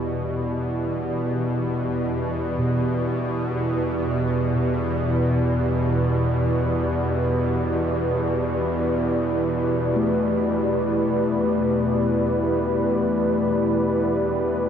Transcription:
0.00 14.69 E2 medium
0.00 14.69 B2 medium
0.00 14.69 E4 medium
0.00 14.69 G4 medium
0.00 14.69 B4 medium
0.00 14.69 D5 medium
2.59 4.54 B2 medium
4.55 10.46 B2 medium
9.96 14.69 A3 medium

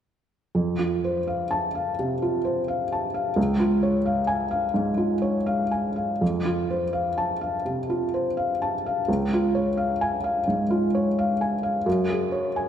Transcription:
0.55 1.95 F2 soft
0.79 1.18 F4 soft
1.04 1.43 C5 soft
1.27 1.66 F5 soft
1.51 1.89 A5 soft
1.75 2.13 F5 soft
1.99 2.37 C3 soft
2.22 2.60 F4 soft
2.45 2.82 C5 soft
2.68 3.05 F5 soft
2.92 3.28 A5 soft
3.14 3.37 F5 soft
3.36 4.71 C#2 soft
3.60 3.96 F4 soft
3.83 4.19 C#5 soft
4.06 4.43 F5 soft
4.27 4.65 G#5 medium
4.51 4.89 F5 soft
4.74 5.12 G#2 soft
4.97 5.37 F4 soft
5.22 5.61 C#5 soft
5.46 5.87 F5 soft
5.71 6.11 G#5 soft
5.96 6.21 F5 soft
6.21 7.60 F2 soft
6.45 6.83 F4 soft
6.70 7.08 C5 soft
6.93 7.31 F5 soft
7.18 7.55 A5 soft
7.41 7.79 F5 soft
7.66 8.03 C3 soft
7.90 8.27 F4 soft
8.14 8.51 C5 soft
8.37 8.75 F5 soft
8.62 8.99 A5 soft
8.86 9.09 F5 soft
9.08 10.44 C#2 soft
9.33 9.69 F4 soft
9.55 9.92 C#5 soft
9.77 10.15 F5 soft
10.01 10.39 G#5 medium
10.24 10.62 F5 soft
10.48 10.85 G#2 soft
10.70 11.08 F4 soft
10.95 11.31 C#5 soft
11.19 11.55 F5 soft
11.41 11.78 G#5 soft
11.63 11.86 F5 soft
11.86 12.69 F#2 medium
12.10 12.46 G#4 soft
12.32 12.69 C#5 soft
12.56 12.69 G#5 soft

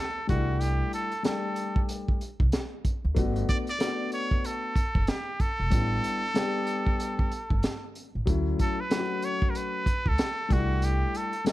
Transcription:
0.00 0.29 A4 medium
0.27 0.80 C2 medium
0.27 1.08 G3 medium
0.27 1.08 A3 medium
0.27 1.09 D4 medium
0.27 1.10 E4 medium
0.27 0.63 F#4 medium
0.27 kick medium
0.27 closed hi-hat medium
0.61 0.93 G4 medium
0.61 closed hi-hat medium
0.93 1.23 A4 medium
0.93 closed hi-hat medium
1.12 closed hi-hat soft
1.23 2.17 G3 medium
1.23 2.18 A3 medium
1.23 2.18 D4 medium
1.23 2.19 G4 medium
1.23 1.86 A4 medium
1.23 snare loud
1.23 closed hi-hat medium
1.56 closed hi-hat medium
1.76 kick medium
1.89 closed hi-hat medium
2.08 kick medium
2.21 closed hi-hat medium
2.40 2.50 C2 medium
2.40 kick medium
2.52 snare loud
2.52 closed hi-hat medium
2.85 kick medium
2.85 closed hi-hat medium
3.05 3.14 D2 medium
3.15 3.42 G1 medium
3.15 3.65 A3 medium
3.15 3.65 B3 medium
3.15 3.66 D4 medium
3.15 3.67 F#4 medium
3.15 kick loud
3.15 closed hi-hat medium
3.36 closed hi-hat soft
3.49 3.58 D5 loud
3.49 kick medium
3.49 closed hi-hat medium
3.67 4.10 D5 loud
3.67 closed hi-hat soft
3.79 4.73 A3 medium
3.79 4.73 B3 medium
3.79 4.74 D4 medium
3.79 4.75 F#4 medium
3.79 snare loud
3.79 closed hi-hat medium
4.12 4.47 C#5 loud
4.12 closed hi-hat medium
4.31 kick medium
4.44 5.11 A4 medium
4.44 closed hi-hat medium
4.76 kick medium
4.76 closed hi-hat medium
4.95 5.05 F#1 medium
4.95 kick medium
5.07 5.43 G4 medium
5.07 snare loud
5.07 closed hi-hat medium
5.40 7.96 A4 loud
5.40 kick medium
5.40 closed hi-hat medium
5.60 5.72 E1 medium
5.70 5.97 A1 loud
5.70 6.20 G3 medium
5.70 6.21 B3 medium
5.70 5.80 C#4 soft
5.70 6.22 E4 medium
5.70 kick loud
5.70 closed hi-hat medium
5.79 6.25 D4 medium
6.04 closed hi-hat medium
6.34 7.28 G3 medium
6.34 7.29 B3 medium
6.34 7.29 D4 medium
6.34 7.30 G4 medium
6.34 snare loud
6.34 closed hi-hat medium
6.67 closed hi-hat medium
6.87 kick medium
7.00 closed hi-hat medium
7.19 kick medium
7.32 closed hi-hat medium
7.50 7.61 G1 medium
7.50 kick medium
7.63 snare medium
7.63 closed hi-hat medium
7.95 closed hi-hat medium
8.15 8.25 A1 medium
8.26 8.53 D2 loud
8.26 8.76 F#3 medium
8.26 8.76 A3 medium
8.26 8.77 C#4 medium
8.26 8.78 E4 medium
8.26 kick loud
8.26 closed hi-hat medium
8.59 8.82 A4 medium
8.59 kick medium
8.59 closed hi-hat medium
8.81 9.26 B4 medium
8.90 9.83 F#3 medium
8.90 9.84 A3 medium
8.90 9.85 C#4 medium
8.90 9.00 E4 medium
8.90 snare loud
8.90 closed hi-hat medium
9.00 9.89 F#4 medium
9.22 9.52 C#5 loud
9.22 closed hi-hat medium
9.42 kick medium
9.50 9.58 A#4 medium
9.55 10.10 B4 loud
9.55 closed hi-hat medium
9.86 kick medium
9.86 closed hi-hat medium
10.06 10.16 C#2 medium
10.06 10.54 A4 medium
10.06 kick medium
10.18 snare loud
10.18 closed hi-hat medium
10.49 11.01 C2 medium
10.49 11.29 G3 medium
10.49 11.30 A3 medium
10.49 11.30 D4 medium
10.49 11.31 E4 medium
10.49 kick loud
10.49 closed hi-hat medium
10.53 10.86 F#4 medium
10.82 11.19 G4 medium
10.82 closed hi-hat medium
11.15 11.48 A4 medium
11.15 closed hi-hat medium
11.33 closed hi-hat soft
11.44 11.52 G3 medium
11.44 11.52 A3 medium
11.44 11.52 D4 medium
11.44 11.52 D#4 medium
11.44 11.52 A4 medium
11.44 snare loud
11.44 closed hi-hat medium

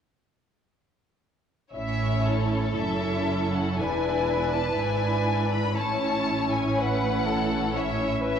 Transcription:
1.74 2.74 A1 soft
1.74 2.74 A2 soft
1.74 2.73 C#4 soft
1.74 2.73 E4 soft
1.74 2.74 C#5 soft
1.74 2.23 E5 soft
2.26 3.80 A4 soft
2.77 3.80 F#1 soft
2.77 3.80 F#2 soft
2.77 3.78 C#4 soft
2.77 3.78 E4 soft
2.77 3.55 E5 soft
3.54 3.80 F#5 soft
3.79 4.79 E1 soft
3.79 4.79 E2 soft
3.79 4.78 D4 soft
3.79 4.77 E4 soft
3.79 5.79 B4 soft
3.79 4.53 G#5 soft
4.55 4.80 A5 soft
4.78 5.76 G#1 soft
4.78 5.76 G#2 soft
4.78 5.76 D4 soft
4.78 5.76 E4 soft
4.78 5.53 G#5 soft
5.53 5.78 B5 soft
5.77 8.39 A1 soft
5.77 8.39 A2 soft
5.77 7.71 C#4 soft
5.77 7.72 E4 soft
5.77 6.76 C#5 soft
5.77 6.53 A5 medium
6.53 6.78 G#5 soft
6.78 7.27 B4 soft
6.78 7.75 F#5 medium
7.27 7.75 A4 soft
7.74 8.39 C#4 soft
7.74 8.39 E4 soft
7.74 8.23 C#5 soft
7.74 8.39 E5 medium
8.22 8.39 B4 soft

